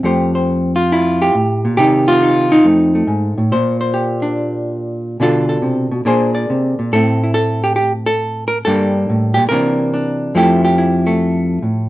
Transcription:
hollow-body jazz guitar
0.03 F2 A3 G4 C5
0.35 C5
0.76 F4
0.92 E4
1.22 G4
1.35 A2
1.65 A#2
1.77 C3 D#3 D#4 G4
2.08 F4
2.23 D#4
2.52 D#4
2.65 F2 A3
2.95 A3
3.07 G#2
3.38 A2
3.52 A#2 C5
3.81 C5
3.94 G4
4.22 D4
5.20 B2 D3 D4 F4 A4
5.49 A4
5.62 C3
5.91 B2
6.05 A#2 A#3 D4 G#4 C5
6.35 D5
6.50 C3
6.79 A#2
6.93 A2 A3 C4 E4 A4
7.24 E4
7.34 A4
7.64 G4
7.76 G4
8.06 A4
8.48 A#4
8.65 G2 G3 A#3 D4 A4
9.10 A2
9.34 A#2 G4
9.49 C3 E3 A#3 A#4
9.53 D4
9.94 D4
10.35 F2 F3 A3 E4 G4
10.65 G4
10.78 E4
11.07 A3
11.62 A2

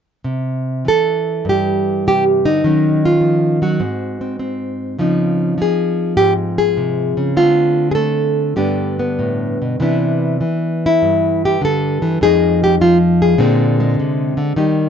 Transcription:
nylon-string guitar
0.24 C3
0.85 E3 A4
1.45 G2
1.49 G4
2.07 C3 G4
2.45 D3 D#4
2.64 D#3 F#3 C#4
3.05 F4
3.21 F3
3.62 F#3 F#4
3.80 G#2 C4
4.21 C4
4.39 C4
4.99 C#3 F3 C4 D#4
5.58 F3 G#4
6.17 G#2 G4
6.58 G#4
6.77 C3
7.17 C#3
7.37 D3 A3 C4 F4
7.91 G#4 A4
7.96 A3
8.56 G2 D3 B3 D4 G4
8.99 B3
9.19 A2
9.62 B2
9.80 C3 E3 B3 D4 E4
10.41 E3
10.86 E4
11.02 G2
11.45 G4
11.61 D3 A4
12.02 E3
12.21 F2 F3 G#3 D#4 G#4
12.64 G4
12.81 F3 F4
13.22 G#4
13.38 A#2 D3 G#3 C4
13.80 G#3
14.00 C3
14.37 D3
14.56 D#3 G3 D#4 G4

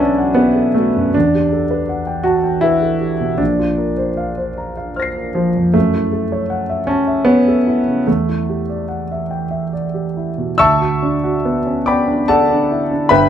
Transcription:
grand piano
Already playing: B1 D4 E4 F#4 A4 B4 F#5
0.00 C#4 A5
0.18 F#5
0.35 B3 B4
0.55 A4
0.74 A3 F#4
0.96 F#2
1.14 E2 D4
1.35 G4
1.52 A4
1.71 B4
1.89 F#5
2.07 G5
2.23 F#4 A5
2.44 G5
2.61 E4 B4
2.82 A4
3.01 G4
3.20 B2
3.38 A#1 D4
3.59 F4
3.78 A#4
3.97 C5
4.17 F5
4.38 C5
4.58 A#5
4.77 F5
4.96 C5 F6 A#6
5.02 C7
5.16 A#4
5.35 F3 F4
5.57 F2
5.74 F#2 A3
5.95 E4
6.12 A4
6.32 C#5
6.50 F#5
6.69 E5
6.87 C#4 A5
7.07 E5
7.25 B3 C#5
7.48 A4
7.67 E4
7.87 C#3
8.07 E2 A3
8.29 E4
8.49 G4
8.69 D5
8.88 F#5
9.12 E5
9.31 G5
9.51 E5
9.73 D5
9.94 G4
10.17 E4
10.38 B2
10.58 D2 E5 A5 C#6 E6
10.81 F#4
11.03 D4
11.24 F#4
11.45 B3
11.66 C#4
11.86 B3 D5 G5 B5 D6
12.08 D4
12.28 A4 D5 F#5 A5
12.51 D4
12.71 E4
12.91 D4
13.09 G1 G2 B4 E5 G5 B5

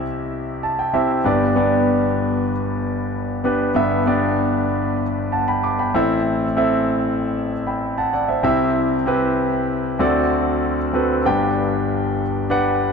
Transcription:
grand piano
Already playing: C2 C3 C4 E4 G4 D#5 E5
0.63 A5
0.79 G5
0.94 C4 E4 G4 E5
1.24 G1 G2 B3 D4 G4 D5
1.56 B3 D4 G4 D5
3.44 B3 D4 G4 B4
3.75 G1 G2 B3 D4 G4 E5
4.06 B3 D4 G4 D5
5.32 F#5 A5
5.48 G5 B5
5.63 B5 D6
5.79 G5 B5
5.95 A1 A2 C4 E4 A4 E5
6.57 C4 E4 A4 E5
7.67 G5 B5
7.98 F#5 A5
8.13 D5 F#5
8.28 C5 E5
8.43 C2 C3 C4 E4 G4 E5
9.06 C4 E4 G4 B4
9.99 D2 D3 C4 F#4 A4 D5
10.93 C4 F#4 A4 B4
11.25 G1 G2 D4 G4 B4 G5
12.50 D4 G4 B4 F#5

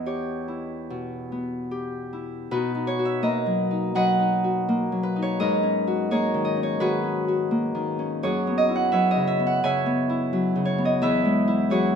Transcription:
harp
Already playing: E2 B3 B4 D#5 B5
0.06 G4 C#5
0.48 E4
0.90 B2
1.32 B3
1.71 G4
2.13 E4
2.51 B2 D#4 F#4 B4
2.75 D#4
2.87 C#5
2.99 F#4
3.05 E5
3.22 A#3 A#4 B4 D#5
3.46 F#3
3.71 D#4
3.95 F#3 B4 D#5 F#5
4.20 D#4
4.44 F#4
4.69 A#3
4.92 F#3
5.03 B4
5.16 D#4
5.22 C#5
5.40 G#2 A#4 B4 D#5
5.63 C#4
5.87 F#4
6.11 A#3 G#4 A#4 C#5
6.34 D#3
6.45 D#5
6.57 C#4
6.63 C#5
6.80 D#3 F#4 G#4 B4
7.04 C#4
7.28 F#4
7.51 A#3
7.75 D#3
7.99 C#4
8.23 F#2 F#4 G#4 C#5
8.47 B3
8.58 D#5
8.69 E4
8.76 F#5
8.92 F#3 B4 C#5 E5
9.11 D#5
9.16 C#3
9.27 E5
9.39 B3
9.47 F#5
9.63 C#3 C#5 E5 G#5
9.86 B3
10.09 E4
10.33 F#3
10.56 C#3
10.65 C#5
10.78 B3
10.85 D#5
11.02 E2 G#4 B4 E5
11.25 G#3
11.48 E4
11.70 F#3 F#4 G#4 C#5

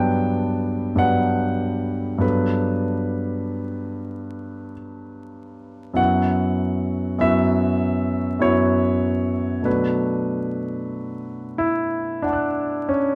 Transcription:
grand piano
Already playing: G2 F#3 B3 D4 B4 G5 A5
0.96 G2 F#3 B3 D4 B4 F#5
2.18 G2 F#3 B3 D4 A4 B4
5.93 F#2 F#3 B3 E4 F#4 F#5
7.18 F#2 F#3 B3 E4 F#4 E5
8.39 F#2 F#3 B3 E4 F#4 C#5
9.62 B2 F#3 A3 D4 F#4 B4
11.58 E4
12.22 D4 F#5
12.26 A5 D6
12.33 F#6
12.89 C#4

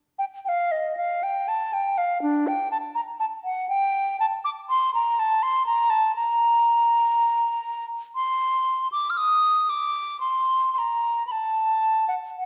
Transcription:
flute
0.19 G5
0.45 F5 G5
0.72 D#5
0.97 F5
1.23 G5
1.48 A5
1.73 G5
1.98 F5
2.22 D4
2.47 G5
2.71 A5
2.95 A#5
3.20 A5
3.45 F#5
3.69 G5
4.20 A5
4.45 D6
4.69 C6
4.94 A#5
5.19 A5
5.43 C6
5.66 A#5
5.90 A5
6.15 A#5
8.15 C6
8.92 D6
9.10 F6
9.17 D#6
9.70 D6
10.20 C6
10.74 C6
10.79 A#5
11.27 B5
11.32 A5
12.08 F#5
12.37 F#5

